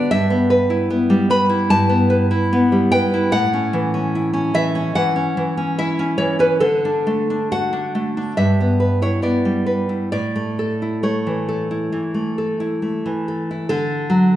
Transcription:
Already playing: B3 D4 F#4
0.11 G2 E5
0.30 B3
0.50 B4
0.70 E4
0.90 B3
1.10 G3
1.30 B4 B5
1.49 E4
1.70 G2 A5
1.89 B3
2.10 B4
2.31 E4
2.53 B3
2.72 G3
2.92 B4 G5
3.14 E4
3.32 A2 F#5
3.53 C#4
3.73 E3
3.94 C#4
4.15 E4
4.33 C#4
4.54 E3 E5
4.75 C#4
4.95 E3 F#5
5.16 C#4
5.37 E3
5.57 C#4
5.79 E4 E5
5.99 C#4
6.18 E3 C#5
6.39 C#4 B4
6.60 D3 A4
6.85 D4
7.07 A3
7.30 D4
7.52 F#4 F#5
7.73 D4
7.95 A3
8.17 D4
8.37 G2 E5
8.60 B3
8.80 B4
9.02 E4 C#5
9.22 B3 D5
9.45 G3
9.66 B4
9.89 E4
10.12 A2 D5
10.36 A3
10.59 A4
10.82 E4
11.03 A3 C#5
11.27 E3
11.49 A4
11.71 E4
11.92 E3
12.14 A3
12.38 A4
12.60 E4
12.82 A3
13.06 E3
13.28 A4
13.51 E4
13.69 D3 A4
14.10 F#3

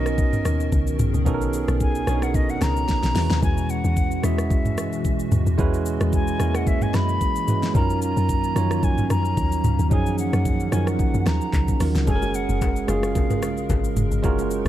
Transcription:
Already playing: B1 B2 D#3 B3 C#4 D#4 F#4 A#4 D#5
0.06 cross-stick, shaker
0.18 kick, shaker
0.33 mid tom, shaker
0.45 D#2, cross-stick, shaker
0.60 shaker
0.72 C#2, kick, shaker
0.87 shaker
0.99 B1 G#4, mid tom, shaker
1.14 C#2, shaker
1.25 B1 B3 C#4 D#4 F#4 A4, kick, shaker
1.34 A#4
1.41 shaker
1.53 shaker
1.68 B1, cross-stick, shaker
1.80 G#5, kick, shaker
1.95 shaker
2.06 B1 B3 C#4 D4 F#4 C#5, cross-stick, shaker
2.14 D#4
2.22 F#5, cross-stick, shaker
2.34 D#5, kick, shaker
2.49 F#5, shaker
2.61 C#2 A#5, cross-stick, snare, shaker
2.76 shaker
2.89 kick, snare, shaker
3.03 B1, snare, shaker
3.14 E2 E3 G#3 C#4 E4 F#4 B4, snare, open hi-hat, shaker
3.30 D#2, snare, shaker
3.43 E2 G#5, kick, shaker
3.58 shaker
3.69 F#5, shaker
3.84 E2, shaker
3.97 kick, shaker
4.11 shaker
4.22 E2 G#3 C#4 E4 F#4 G#4 E5, cross-stick, shaker
4.38 cross-stick, shaker
4.51 kick, shaker
4.65 mid tom, shaker
4.78 F#2, cross-stick, shaker
4.93 shaker
5.05 E2, kick, shaker
5.19 shaker
5.32 D#2 D#5, mid tom, shaker
5.47 E2, shaker
5.57 E2 G#3 C#4 E4 F#4 B4, kick, shaker
5.74 shaker
5.86 shaker
6.01 E2, cross-stick, shaker
6.13 G#5, kick, shaker
6.28 shaker
6.39 E2 G#3 A#3 C#4 E4 F#4, cross-stick, shaker
6.55 F#5, cross-stick, shaker
6.67 E5, kick, shaker
6.82 G#5, mid tom, shaker
6.94 F#2 B5, cross-stick, snare, shaker
7.09 shaker
7.21 kick, shaker
7.36 shaker
7.47 G#3 C#4 E4 F#4 B4, mid tom, shaker
7.63 snare, shaker
7.74 F#2 D#3 F#3 A#3 C#4 D#4 F4 A#4 A#5, kick, shaker
7.90 shaker
8.02 A#5, shaker
8.17 F#2, shaker
8.29 kick, shaker
8.44 shaker
8.55 F#2 F3 C#4 D#4 F4 C#5, cross-stick, shaker
8.61 F#3
8.71 cross-stick, shaker
8.83 G#5, kick, shaker
8.98 mid tom, shaker
9.10 F#2 A#5, cross-stick, shaker
9.25 shaker
9.37 D#2, kick, shaker
9.52 shaker
9.64 C#2, mid tom, shaker
9.79 D#2, shaker
9.90 F#2 F3 F#3 C#4 D#4 G#4 F#5 G#5, kick, shaker
10.06 shaker
10.18 F#5, shaker
10.33 F#2, cross-stick, shaker
10.45 kick, shaker
10.60 shaker
10.71 F#2 F3 F#3 C#4 D#4 A#4 G#5, cross-stick, shaker
10.87 F#5, cross-stick, shaker
10.99 kick, shaker
11.14 F#2, shaker
11.26 D#2 A#5, cross-stick, snare, shaker
11.41 shaker
11.53 C#2, kick, clap, shaker
11.68 kick, shaker
11.79 D#2 F#3 C#4 D#4 F4 A#4, cross-stick, open hi-hat, shaker
11.95 C#2, snare, shaker
12.06 F#1 C#3 G#3 C#4 F#4 G#4 A4 A#4 G#5, kick, low conga, shaker
12.16 A#4
12.22 low bongo, shaker
12.34 F#5, shaker
12.49 F#1, shaker
12.61 kick, high bongo, shaker
12.76 shaker
12.87 F#1 G#3 C#4 F4 F#4 G#4 F5, cross-stick, low bongo, shaker
13.03 cross-stick, shaker
13.15 kick, low conga, shaker
13.30 mid tom, high bongo, shaker
13.42 A#1, cross-stick, low bongo, shaker
13.57 shaker
13.70 G#1, kick, high bongo, low conga, shaker
13.84 shaker
13.96 F#1, mid tom, shaker
14.11 G#1, shaker
14.22 F#1 G#3 C#4 D#4 F4 F#4 A#4, kick, low conga, shaker
14.39 low bongo, shaker
14.51 shaker

